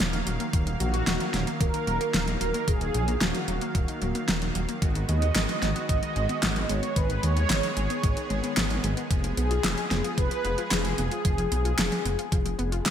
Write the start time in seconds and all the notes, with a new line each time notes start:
Already playing: D#3 F#3 A#3 F5
0.00 D#1, snare, closed hi-hat
0.13 D#3, closed hi-hat
0.27 D#1 F#3, closed hi-hat
0.40 A#3, closed hi-hat
0.53 D#1 D#3, kick, closed hi-hat
0.67 D#3, closed hi-hat
0.80 A#1 F#3 F#4, closed hi-hat
0.93 A#3, closed hi-hat
1.07 D#1 D#3, snare, closed hi-hat
1.20 D#3, closed hi-hat
1.34 D#1 F#3, snare, closed hi-hat
1.47 A#3, closed hi-hat
1.60 D#1 D#3 A#4, kick, closed hi-hat
1.74 D#3, closed hi-hat
1.87 D#1 F#3, closed hi-hat
2.01 A#3, closed hi-hat
2.14 D#1 D#3, snare, closed hi-hat
2.28 D#3, closed hi-hat
2.41 D#1 F#3 A#4, closed hi-hat
2.54 A#3, closed hi-hat
2.68 D#1 D#3 G#4, kick, closed hi-hat
2.81 D#3, closed hi-hat
2.94 A#1 F#3, closed hi-hat
3.08 A#3, closed hi-hat
3.21 D#1 D#3 F#4, snare, closed hi-hat
3.35 D#3, closed hi-hat
3.48 D#1 F#3, closed hi-hat
3.61 A#3, closed hi-hat
3.75 D#1 D#3, kick, closed hi-hat
3.88 D#3, closed hi-hat
4.02 D#1 F#3, closed hi-hat
4.15 A#3, closed hi-hat
4.28 D#1 D#3, snare, closed hi-hat
4.42 D#3, closed hi-hat
4.55 D#1 F#3, closed hi-hat
4.69 A#3, closed hi-hat
4.82 G#1 D#3 G#3 B3 F#4, kick, closed hi-hat
4.95 D#3, closed hi-hat
5.09 D#2 G#3 D#5, closed hi-hat
5.22 B3, closed hi-hat
5.35 G#1 D#3, snare, clap, closed hi-hat
5.49 D#3, closed hi-hat
5.62 G#1 G#3, snare, closed hi-hat
5.76 B3, closed hi-hat
5.89 G#1 D#3 D#5, kick, closed hi-hat
6.03 D#3, closed hi-hat
6.16 G#1 G#3, closed hi-hat
6.29 B3, closed hi-hat
6.43 G#1 D#3, snare, clap, closed hi-hat
6.56 D#3, closed hi-hat
6.69 G#1 G#3 C#5, closed hi-hat
6.83 B3, closed hi-hat
6.96 G#1 D#3 G#4 B4, kick, closed hi-hat
7.10 D#3, closed hi-hat
7.23 D#2 G#3 C#5, closed hi-hat
7.36 B3, closed hi-hat
7.50 G#1 D#3, snare, clap, closed hi-hat
7.63 D#3, closed hi-hat
7.77 G#1 G#3, closed hi-hat
7.90 B3, closed hi-hat
8.03 G#1 D#3, kick, closed hi-hat
8.17 D#3, closed hi-hat
8.30 G#1 G#3, closed hi-hat
8.44 B3, closed hi-hat
8.57 G#1 D#3, snare, clap, closed hi-hat
8.70 D#3, closed hi-hat
8.84 G#1 G#3, closed hi-hat
8.97 B3, closed hi-hat
9.10 F1 F3 G#4, kick, closed hi-hat
9.24 F3, closed hi-hat
9.37 B1 B3 G#4, closed hi-hat
9.51 F4, closed hi-hat
9.64 F1 F3, snare, clap, closed hi-hat
9.78 F3, closed hi-hat
9.91 F1 B3, snare, closed hi-hat
10.04 F4, closed hi-hat
10.18 F1 F3 B4, kick, closed hi-hat
10.31 F3, closed hi-hat
10.44 F1 B3, closed hi-hat
10.58 F4, closed hi-hat
10.71 F1 F3 G#4, snare, clap, closed hi-hat
10.85 F3, closed hi-hat
10.98 F1 B3 G#4, closed hi-hat
11.11 F4, closed hi-hat
11.25 F1 F3, kick, closed hi-hat
11.38 F3, closed hi-hat
11.52 B1 B3, closed hi-hat
11.65 F4, closed hi-hat
11.78 F1 F3, snare, clap, closed hi-hat
11.92 F3, closed hi-hat
12.05 F1 B3, closed hi-hat
12.19 F4, closed hi-hat
12.32 F1 F3, kick, closed hi-hat
12.45 F3, closed hi-hat
12.59 F1 B3, closed hi-hat
12.72 F4, closed hi-hat
12.86 F3, snare, clap, closed hi-hat